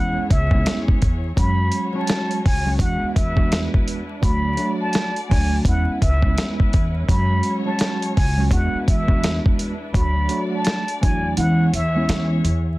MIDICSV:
0, 0, Header, 1, 7, 480
1, 0, Start_track
1, 0, Tempo, 714286
1, 923, Time_signature, 4, 2, 24, 8
1, 8592, End_track
2, 0, Start_track
2, 0, Title_t, "Muted trumpet"
2, 0, Program_c, 0, 59
2, 0, Note_on_c, 0, 78, 90
2, 177, Note_off_c, 0, 78, 0
2, 206, Note_on_c, 0, 76, 87
2, 569, Note_off_c, 0, 76, 0
2, 923, Note_on_c, 0, 83, 103
2, 1288, Note_off_c, 0, 83, 0
2, 1313, Note_on_c, 0, 81, 79
2, 1624, Note_off_c, 0, 81, 0
2, 1643, Note_on_c, 0, 80, 82
2, 1859, Note_off_c, 0, 80, 0
2, 1881, Note_on_c, 0, 78, 88
2, 2098, Note_off_c, 0, 78, 0
2, 2116, Note_on_c, 0, 76, 82
2, 2484, Note_off_c, 0, 76, 0
2, 2847, Note_on_c, 0, 83, 97
2, 3210, Note_off_c, 0, 83, 0
2, 3230, Note_on_c, 0, 81, 85
2, 3539, Note_off_c, 0, 81, 0
2, 3543, Note_on_c, 0, 80, 78
2, 3768, Note_off_c, 0, 80, 0
2, 3804, Note_on_c, 0, 78, 85
2, 4019, Note_off_c, 0, 78, 0
2, 4045, Note_on_c, 0, 76, 86
2, 4409, Note_off_c, 0, 76, 0
2, 4764, Note_on_c, 0, 83, 103
2, 5129, Note_off_c, 0, 83, 0
2, 5144, Note_on_c, 0, 81, 75
2, 5459, Note_off_c, 0, 81, 0
2, 5482, Note_on_c, 0, 80, 80
2, 5698, Note_off_c, 0, 80, 0
2, 5732, Note_on_c, 0, 78, 85
2, 5944, Note_off_c, 0, 78, 0
2, 5963, Note_on_c, 0, 76, 83
2, 6328, Note_off_c, 0, 76, 0
2, 6677, Note_on_c, 0, 83, 97
2, 7045, Note_off_c, 0, 83, 0
2, 7080, Note_on_c, 0, 81, 85
2, 7388, Note_off_c, 0, 81, 0
2, 7395, Note_on_c, 0, 80, 82
2, 7615, Note_off_c, 0, 80, 0
2, 7643, Note_on_c, 0, 78, 91
2, 7859, Note_off_c, 0, 78, 0
2, 7889, Note_on_c, 0, 76, 90
2, 8251, Note_off_c, 0, 76, 0
2, 8592, End_track
3, 0, Start_track
3, 0, Title_t, "String section"
3, 0, Program_c, 1, 48
3, 0, Note_on_c, 1, 59, 85
3, 0, Note_on_c, 1, 64, 75
3, 0, Note_on_c, 1, 68, 72
3, 0, Note_on_c, 1, 73, 90
3, 909, Note_off_c, 1, 73, 0
3, 916, Note_on_c, 1, 56, 82
3, 917, Note_on_c, 1, 61, 76
3, 917, Note_on_c, 1, 66, 74
3, 917, Note_on_c, 1, 73, 88
3, 918, Note_off_c, 1, 64, 0
3, 918, Note_off_c, 1, 68, 0
3, 919, Note_off_c, 1, 59, 0
3, 1870, Note_off_c, 1, 61, 0
3, 1870, Note_off_c, 1, 66, 0
3, 1870, Note_off_c, 1, 73, 0
3, 1876, Note_on_c, 1, 71, 98
3, 1877, Note_on_c, 1, 62, 74
3, 1877, Note_on_c, 1, 64, 85
3, 2820, Note_off_c, 1, 56, 0
3, 2830, Note_off_c, 1, 64, 0
3, 2830, Note_off_c, 1, 71, 0
3, 2851, Note_on_c, 1, 57, 82
3, 2851, Note_on_c, 1, 74, 90
3, 2852, Note_on_c, 1, 66, 74
3, 3781, Note_off_c, 1, 62, 0
3, 3797, Note_off_c, 1, 57, 0
3, 3797, Note_off_c, 1, 74, 0
3, 3798, Note_off_c, 1, 66, 0
3, 3806, Note_on_c, 1, 61, 81
3, 3806, Note_on_c, 1, 64, 77
3, 3806, Note_on_c, 1, 71, 94
3, 3807, Note_on_c, 1, 56, 85
3, 4755, Note_off_c, 1, 64, 0
3, 4755, Note_off_c, 1, 71, 0
3, 4776, Note_on_c, 1, 73, 94
3, 4777, Note_on_c, 1, 66, 74
3, 5705, Note_off_c, 1, 61, 0
3, 5720, Note_off_c, 1, 66, 0
3, 5720, Note_off_c, 1, 73, 0
3, 5720, Note_on_c, 1, 62, 78
3, 5720, Note_on_c, 1, 64, 83
3, 5720, Note_on_c, 1, 71, 87
3, 6658, Note_off_c, 1, 56, 0
3, 6672, Note_off_c, 1, 64, 0
3, 6672, Note_off_c, 1, 71, 0
3, 6684, Note_on_c, 1, 66, 70
3, 6686, Note_on_c, 1, 57, 79
3, 6686, Note_on_c, 1, 74, 90
3, 7622, Note_off_c, 1, 62, 0
3, 7634, Note_off_c, 1, 66, 0
3, 7635, Note_off_c, 1, 57, 0
3, 7635, Note_off_c, 1, 74, 0
3, 7651, Note_on_c, 1, 59, 87
3, 7651, Note_on_c, 1, 64, 75
3, 7651, Note_on_c, 1, 68, 71
3, 7651, Note_on_c, 1, 73, 94
3, 8592, Note_off_c, 1, 59, 0
3, 8592, Note_off_c, 1, 64, 0
3, 8592, Note_off_c, 1, 68, 0
3, 8592, Note_off_c, 1, 73, 0
3, 8592, End_track
4, 0, Start_track
4, 0, Title_t, "Tine electric piano"
4, 0, Program_c, 2, 4
4, 0, Note_on_c, 2, 40, 92
4, 0, Note_on_c, 2, 56, 89
4, 0, Note_on_c, 2, 59, 82
4, 0, Note_on_c, 2, 61, 83
4, 0, Note_on_c, 2, 64, 110
4, 190, Note_off_c, 2, 40, 0
4, 193, Note_off_c, 2, 56, 0
4, 195, Note_off_c, 2, 59, 0
4, 197, Note_off_c, 2, 61, 0
4, 200, Note_off_c, 2, 64, 0
4, 350, Note_on_c, 2, 40, 99
4, 355, Note_on_c, 2, 56, 91
4, 360, Note_on_c, 2, 59, 86
4, 364, Note_on_c, 2, 61, 93
4, 368, Note_on_c, 2, 64, 99
4, 660, Note_off_c, 2, 40, 0
4, 663, Note_off_c, 2, 56, 0
4, 665, Note_off_c, 2, 59, 0
4, 667, Note_off_c, 2, 61, 0
4, 669, Note_off_c, 2, 64, 0
4, 918, Note_on_c, 2, 54, 98
4, 924, Note_on_c, 2, 56, 89
4, 930, Note_on_c, 2, 61, 88
4, 936, Note_on_c, 2, 66, 114
4, 1273, Note_off_c, 2, 54, 0
4, 1276, Note_off_c, 2, 56, 0
4, 1279, Note_off_c, 2, 61, 0
4, 1282, Note_off_c, 2, 66, 0
4, 1297, Note_on_c, 2, 54, 92
4, 1303, Note_on_c, 2, 56, 80
4, 1309, Note_on_c, 2, 61, 87
4, 1315, Note_on_c, 2, 66, 105
4, 1614, Note_off_c, 2, 54, 0
4, 1617, Note_off_c, 2, 56, 0
4, 1620, Note_off_c, 2, 61, 0
4, 1622, Note_off_c, 2, 66, 0
4, 1783, Note_on_c, 2, 54, 93
4, 1789, Note_on_c, 2, 56, 87
4, 1795, Note_on_c, 2, 61, 86
4, 1801, Note_on_c, 2, 66, 107
4, 1867, Note_off_c, 2, 56, 0
4, 1870, Note_on_c, 2, 40, 92
4, 1875, Note_on_c, 2, 56, 85
4, 1879, Note_off_c, 2, 54, 0
4, 1879, Note_on_c, 2, 59, 96
4, 1880, Note_off_c, 2, 66, 0
4, 1883, Note_on_c, 2, 62, 84
4, 1884, Note_off_c, 2, 61, 0
4, 1888, Note_on_c, 2, 66, 107
4, 2229, Note_off_c, 2, 40, 0
4, 2232, Note_off_c, 2, 56, 0
4, 2234, Note_off_c, 2, 59, 0
4, 2236, Note_off_c, 2, 62, 0
4, 2238, Note_off_c, 2, 66, 0
4, 2252, Note_on_c, 2, 40, 102
4, 2256, Note_on_c, 2, 56, 95
4, 2260, Note_on_c, 2, 59, 90
4, 2265, Note_on_c, 2, 62, 88
4, 2269, Note_on_c, 2, 66, 105
4, 2694, Note_off_c, 2, 40, 0
4, 2696, Note_off_c, 2, 56, 0
4, 2698, Note_off_c, 2, 59, 0
4, 2701, Note_off_c, 2, 62, 0
4, 2703, Note_off_c, 2, 66, 0
4, 2833, Note_on_c, 2, 54, 100
4, 2839, Note_on_c, 2, 57, 96
4, 2844, Note_on_c, 2, 62, 92
4, 2851, Note_on_c, 2, 66, 111
4, 3061, Note_off_c, 2, 54, 0
4, 3066, Note_off_c, 2, 57, 0
4, 3069, Note_off_c, 2, 62, 0
4, 3069, Note_on_c, 2, 54, 98
4, 3072, Note_off_c, 2, 66, 0
4, 3076, Note_on_c, 2, 57, 90
4, 3081, Note_on_c, 2, 62, 84
4, 3087, Note_on_c, 2, 66, 99
4, 3429, Note_off_c, 2, 54, 0
4, 3432, Note_off_c, 2, 57, 0
4, 3435, Note_off_c, 2, 62, 0
4, 3438, Note_off_c, 2, 66, 0
4, 3556, Note_on_c, 2, 54, 91
4, 3563, Note_on_c, 2, 57, 93
4, 3569, Note_on_c, 2, 62, 90
4, 3575, Note_on_c, 2, 66, 98
4, 3799, Note_off_c, 2, 54, 0
4, 3803, Note_off_c, 2, 57, 0
4, 3804, Note_on_c, 2, 40, 95
4, 3806, Note_off_c, 2, 62, 0
4, 3809, Note_off_c, 2, 66, 0
4, 3809, Note_on_c, 2, 56, 87
4, 3813, Note_on_c, 2, 59, 82
4, 3819, Note_on_c, 2, 61, 84
4, 3822, Note_on_c, 2, 64, 116
4, 4029, Note_off_c, 2, 40, 0
4, 4031, Note_off_c, 2, 56, 0
4, 4033, Note_off_c, 2, 59, 0
4, 4036, Note_off_c, 2, 61, 0
4, 4038, Note_off_c, 2, 64, 0
4, 4189, Note_on_c, 2, 40, 98
4, 4194, Note_on_c, 2, 56, 93
4, 4198, Note_on_c, 2, 59, 90
4, 4202, Note_on_c, 2, 61, 90
4, 4207, Note_on_c, 2, 64, 100
4, 4500, Note_off_c, 2, 40, 0
4, 4502, Note_off_c, 2, 56, 0
4, 4504, Note_off_c, 2, 59, 0
4, 4506, Note_off_c, 2, 61, 0
4, 4509, Note_off_c, 2, 64, 0
4, 4760, Note_on_c, 2, 54, 99
4, 4766, Note_on_c, 2, 56, 92
4, 4772, Note_on_c, 2, 61, 90
4, 4778, Note_on_c, 2, 66, 114
4, 5114, Note_off_c, 2, 54, 0
4, 5117, Note_off_c, 2, 56, 0
4, 5120, Note_off_c, 2, 61, 0
4, 5123, Note_off_c, 2, 66, 0
4, 5141, Note_on_c, 2, 54, 91
4, 5147, Note_on_c, 2, 56, 82
4, 5154, Note_on_c, 2, 61, 86
4, 5160, Note_on_c, 2, 66, 109
4, 5456, Note_off_c, 2, 54, 0
4, 5459, Note_off_c, 2, 56, 0
4, 5462, Note_off_c, 2, 61, 0
4, 5465, Note_off_c, 2, 66, 0
4, 5628, Note_on_c, 2, 54, 92
4, 5634, Note_on_c, 2, 56, 90
4, 5641, Note_on_c, 2, 61, 85
4, 5646, Note_on_c, 2, 66, 108
4, 5709, Note_off_c, 2, 56, 0
4, 5714, Note_on_c, 2, 40, 92
4, 5717, Note_on_c, 2, 56, 88
4, 5721, Note_off_c, 2, 54, 0
4, 5722, Note_on_c, 2, 59, 95
4, 5723, Note_off_c, 2, 66, 0
4, 5727, Note_on_c, 2, 62, 87
4, 5728, Note_off_c, 2, 61, 0
4, 5731, Note_on_c, 2, 66, 107
4, 6071, Note_off_c, 2, 40, 0
4, 6073, Note_off_c, 2, 56, 0
4, 6075, Note_off_c, 2, 59, 0
4, 6077, Note_off_c, 2, 62, 0
4, 6080, Note_off_c, 2, 66, 0
4, 6091, Note_on_c, 2, 40, 100
4, 6097, Note_on_c, 2, 56, 97
4, 6101, Note_on_c, 2, 59, 92
4, 6106, Note_on_c, 2, 62, 87
4, 6109, Note_on_c, 2, 66, 105
4, 6534, Note_off_c, 2, 40, 0
4, 6536, Note_off_c, 2, 56, 0
4, 6538, Note_off_c, 2, 59, 0
4, 6541, Note_off_c, 2, 62, 0
4, 6543, Note_off_c, 2, 66, 0
4, 6673, Note_on_c, 2, 54, 103
4, 6678, Note_on_c, 2, 57, 93
4, 6686, Note_on_c, 2, 62, 93
4, 6691, Note_on_c, 2, 66, 113
4, 6903, Note_off_c, 2, 54, 0
4, 6906, Note_off_c, 2, 57, 0
4, 6910, Note_off_c, 2, 62, 0
4, 6912, Note_off_c, 2, 66, 0
4, 6912, Note_on_c, 2, 54, 98
4, 6918, Note_on_c, 2, 57, 89
4, 6924, Note_on_c, 2, 62, 80
4, 6930, Note_on_c, 2, 66, 102
4, 7270, Note_off_c, 2, 54, 0
4, 7273, Note_off_c, 2, 57, 0
4, 7276, Note_off_c, 2, 62, 0
4, 7279, Note_off_c, 2, 66, 0
4, 7399, Note_on_c, 2, 54, 93
4, 7404, Note_on_c, 2, 57, 88
4, 7412, Note_on_c, 2, 62, 89
4, 7416, Note_on_c, 2, 66, 98
4, 7641, Note_off_c, 2, 54, 0
4, 7644, Note_off_c, 2, 57, 0
4, 7645, Note_on_c, 2, 40, 90
4, 7647, Note_off_c, 2, 62, 0
4, 7649, Note_off_c, 2, 66, 0
4, 7649, Note_on_c, 2, 56, 88
4, 7654, Note_on_c, 2, 59, 85
4, 7659, Note_on_c, 2, 61, 84
4, 7663, Note_on_c, 2, 64, 112
4, 7869, Note_off_c, 2, 40, 0
4, 7871, Note_off_c, 2, 56, 0
4, 7874, Note_off_c, 2, 59, 0
4, 7876, Note_off_c, 2, 61, 0
4, 7878, Note_off_c, 2, 64, 0
4, 8029, Note_on_c, 2, 40, 98
4, 8034, Note_on_c, 2, 56, 91
4, 8038, Note_on_c, 2, 59, 86
4, 8043, Note_on_c, 2, 61, 94
4, 8047, Note_on_c, 2, 64, 100
4, 8340, Note_off_c, 2, 40, 0
4, 8342, Note_off_c, 2, 56, 0
4, 8344, Note_off_c, 2, 59, 0
4, 8347, Note_off_c, 2, 61, 0
4, 8349, Note_off_c, 2, 64, 0
4, 8592, End_track
5, 0, Start_track
5, 0, Title_t, "Upright bass"
5, 0, Program_c, 3, 32
5, 0, Note_on_c, 3, 40, 110
5, 88, Note_off_c, 3, 40, 0
5, 204, Note_on_c, 3, 37, 103
5, 412, Note_off_c, 3, 37, 0
5, 688, Note_on_c, 3, 40, 94
5, 894, Note_off_c, 3, 40, 0
5, 920, Note_on_c, 3, 42, 102
5, 1129, Note_off_c, 3, 42, 0
5, 1651, Note_on_c, 3, 37, 87
5, 1855, Note_off_c, 3, 37, 0
5, 1875, Note_on_c, 3, 40, 107
5, 2007, Note_off_c, 3, 40, 0
5, 2125, Note_on_c, 3, 40, 91
5, 2460, Note_off_c, 3, 40, 0
5, 2841, Note_on_c, 3, 38, 108
5, 3050, Note_off_c, 3, 38, 0
5, 3570, Note_on_c, 3, 38, 97
5, 3775, Note_off_c, 3, 38, 0
5, 3795, Note_on_c, 3, 40, 112
5, 3927, Note_off_c, 3, 40, 0
5, 4044, Note_on_c, 3, 37, 105
5, 4252, Note_off_c, 3, 37, 0
5, 4528, Note_on_c, 3, 40, 102
5, 4733, Note_off_c, 3, 40, 0
5, 4761, Note_on_c, 3, 42, 106
5, 4970, Note_off_c, 3, 42, 0
5, 5491, Note_on_c, 3, 37, 97
5, 5695, Note_off_c, 3, 37, 0
5, 5717, Note_on_c, 3, 40, 110
5, 5848, Note_off_c, 3, 40, 0
5, 5966, Note_on_c, 3, 40, 100
5, 6301, Note_off_c, 3, 40, 0
5, 6682, Note_on_c, 3, 38, 105
5, 6890, Note_off_c, 3, 38, 0
5, 7411, Note_on_c, 3, 40, 93
5, 7616, Note_off_c, 3, 40, 0
5, 7641, Note_on_c, 3, 52, 107
5, 7850, Note_off_c, 3, 52, 0
5, 7883, Note_on_c, 3, 40, 86
5, 8091, Note_off_c, 3, 40, 0
5, 8122, Note_on_c, 3, 52, 103
5, 8330, Note_off_c, 3, 52, 0
5, 8361, Note_on_c, 3, 40, 98
5, 8570, Note_off_c, 3, 40, 0
5, 8592, End_track
6, 0, Start_track
6, 0, Title_t, "Muted upright bass strokes"
6, 112, Note_on_c, 9, 29, 51
6, 179, Note_off_c, 9, 29, 0
6, 2030, Note_on_c, 9, 29, 50
6, 2098, Note_off_c, 9, 29, 0
6, 3950, Note_on_c, 9, 29, 52
6, 4017, Note_off_c, 9, 29, 0
6, 5870, Note_on_c, 9, 29, 52
6, 5938, Note_off_c, 9, 29, 0
6, 8592, End_track
7, 0, Start_track
7, 0, Title_t, "Drums"
7, 205, Note_on_c, 9, 36, 94
7, 206, Note_on_c, 9, 42, 84
7, 272, Note_off_c, 9, 36, 0
7, 273, Note_off_c, 9, 42, 0
7, 343, Note_on_c, 9, 36, 96
7, 410, Note_off_c, 9, 36, 0
7, 444, Note_on_c, 9, 42, 100
7, 449, Note_on_c, 9, 38, 120
7, 511, Note_off_c, 9, 42, 0
7, 516, Note_off_c, 9, 38, 0
7, 594, Note_on_c, 9, 36, 92
7, 661, Note_off_c, 9, 36, 0
7, 684, Note_on_c, 9, 42, 73
7, 688, Note_on_c, 9, 36, 94
7, 751, Note_off_c, 9, 42, 0
7, 755, Note_off_c, 9, 36, 0
7, 921, Note_on_c, 9, 36, 116
7, 925, Note_on_c, 9, 42, 94
7, 988, Note_off_c, 9, 36, 0
7, 992, Note_off_c, 9, 42, 0
7, 1153, Note_on_c, 9, 42, 73
7, 1220, Note_off_c, 9, 42, 0
7, 1393, Note_on_c, 9, 42, 85
7, 1408, Note_on_c, 9, 38, 124
7, 1461, Note_off_c, 9, 42, 0
7, 1475, Note_off_c, 9, 38, 0
7, 1551, Note_on_c, 9, 42, 53
7, 1618, Note_off_c, 9, 42, 0
7, 1650, Note_on_c, 9, 36, 95
7, 1652, Note_on_c, 9, 46, 68
7, 1718, Note_off_c, 9, 36, 0
7, 1719, Note_off_c, 9, 46, 0
7, 1875, Note_on_c, 9, 36, 96
7, 1880, Note_on_c, 9, 42, 108
7, 1943, Note_off_c, 9, 36, 0
7, 1947, Note_off_c, 9, 42, 0
7, 2124, Note_on_c, 9, 36, 89
7, 2126, Note_on_c, 9, 42, 82
7, 2191, Note_off_c, 9, 36, 0
7, 2193, Note_off_c, 9, 42, 0
7, 2263, Note_on_c, 9, 36, 96
7, 2330, Note_off_c, 9, 36, 0
7, 2364, Note_on_c, 9, 42, 100
7, 2369, Note_on_c, 9, 38, 119
7, 2431, Note_off_c, 9, 42, 0
7, 2436, Note_off_c, 9, 38, 0
7, 2514, Note_on_c, 9, 36, 89
7, 2581, Note_off_c, 9, 36, 0
7, 2604, Note_on_c, 9, 42, 74
7, 2672, Note_off_c, 9, 42, 0
7, 2841, Note_on_c, 9, 36, 120
7, 2846, Note_on_c, 9, 42, 96
7, 2908, Note_off_c, 9, 36, 0
7, 2913, Note_off_c, 9, 42, 0
7, 3073, Note_on_c, 9, 42, 72
7, 3141, Note_off_c, 9, 42, 0
7, 3312, Note_on_c, 9, 42, 84
7, 3327, Note_on_c, 9, 38, 127
7, 3380, Note_off_c, 9, 42, 0
7, 3394, Note_off_c, 9, 38, 0
7, 3470, Note_on_c, 9, 42, 50
7, 3537, Note_off_c, 9, 42, 0
7, 3570, Note_on_c, 9, 36, 93
7, 3570, Note_on_c, 9, 46, 67
7, 3637, Note_off_c, 9, 36, 0
7, 3637, Note_off_c, 9, 46, 0
7, 3796, Note_on_c, 9, 36, 96
7, 3800, Note_on_c, 9, 42, 106
7, 3863, Note_off_c, 9, 36, 0
7, 3867, Note_off_c, 9, 42, 0
7, 4044, Note_on_c, 9, 36, 89
7, 4045, Note_on_c, 9, 42, 83
7, 4112, Note_off_c, 9, 36, 0
7, 4113, Note_off_c, 9, 42, 0
7, 4183, Note_on_c, 9, 36, 94
7, 4250, Note_off_c, 9, 36, 0
7, 4285, Note_on_c, 9, 42, 96
7, 4290, Note_on_c, 9, 38, 118
7, 4352, Note_off_c, 9, 42, 0
7, 4357, Note_off_c, 9, 38, 0
7, 4434, Note_on_c, 9, 36, 90
7, 4501, Note_off_c, 9, 36, 0
7, 4524, Note_on_c, 9, 42, 74
7, 4528, Note_on_c, 9, 36, 94
7, 4591, Note_off_c, 9, 42, 0
7, 4595, Note_off_c, 9, 36, 0
7, 4761, Note_on_c, 9, 36, 117
7, 4765, Note_on_c, 9, 42, 97
7, 4828, Note_off_c, 9, 36, 0
7, 4833, Note_off_c, 9, 42, 0
7, 4994, Note_on_c, 9, 42, 71
7, 5061, Note_off_c, 9, 42, 0
7, 5233, Note_on_c, 9, 42, 88
7, 5248, Note_on_c, 9, 38, 125
7, 5300, Note_off_c, 9, 42, 0
7, 5315, Note_off_c, 9, 38, 0
7, 5392, Note_on_c, 9, 42, 51
7, 5460, Note_off_c, 9, 42, 0
7, 5491, Note_on_c, 9, 46, 69
7, 5492, Note_on_c, 9, 36, 98
7, 5559, Note_off_c, 9, 36, 0
7, 5559, Note_off_c, 9, 46, 0
7, 5717, Note_on_c, 9, 36, 98
7, 5722, Note_on_c, 9, 42, 105
7, 5784, Note_off_c, 9, 36, 0
7, 5789, Note_off_c, 9, 42, 0
7, 5966, Note_on_c, 9, 36, 90
7, 5967, Note_on_c, 9, 42, 83
7, 6033, Note_off_c, 9, 36, 0
7, 6035, Note_off_c, 9, 42, 0
7, 6104, Note_on_c, 9, 36, 96
7, 6171, Note_off_c, 9, 36, 0
7, 6206, Note_on_c, 9, 42, 99
7, 6211, Note_on_c, 9, 38, 120
7, 6273, Note_off_c, 9, 42, 0
7, 6278, Note_off_c, 9, 38, 0
7, 6355, Note_on_c, 9, 36, 92
7, 6422, Note_off_c, 9, 36, 0
7, 6446, Note_on_c, 9, 42, 74
7, 6513, Note_off_c, 9, 42, 0
7, 6682, Note_on_c, 9, 36, 117
7, 6687, Note_on_c, 9, 42, 98
7, 6749, Note_off_c, 9, 36, 0
7, 6755, Note_off_c, 9, 42, 0
7, 6915, Note_on_c, 9, 42, 72
7, 6982, Note_off_c, 9, 42, 0
7, 7154, Note_on_c, 9, 42, 87
7, 7169, Note_on_c, 9, 38, 122
7, 7221, Note_off_c, 9, 42, 0
7, 7236, Note_off_c, 9, 38, 0
7, 7312, Note_on_c, 9, 42, 53
7, 7379, Note_off_c, 9, 42, 0
7, 7411, Note_on_c, 9, 36, 97
7, 7412, Note_on_c, 9, 42, 98
7, 7478, Note_off_c, 9, 36, 0
7, 7479, Note_off_c, 9, 42, 0
7, 7641, Note_on_c, 9, 42, 103
7, 7708, Note_off_c, 9, 42, 0
7, 7887, Note_on_c, 9, 42, 85
7, 7954, Note_off_c, 9, 42, 0
7, 8124, Note_on_c, 9, 42, 101
7, 8129, Note_on_c, 9, 38, 116
7, 8191, Note_off_c, 9, 42, 0
7, 8196, Note_off_c, 9, 38, 0
7, 8364, Note_on_c, 9, 42, 71
7, 8431, Note_off_c, 9, 42, 0
7, 8592, End_track
0, 0, End_of_file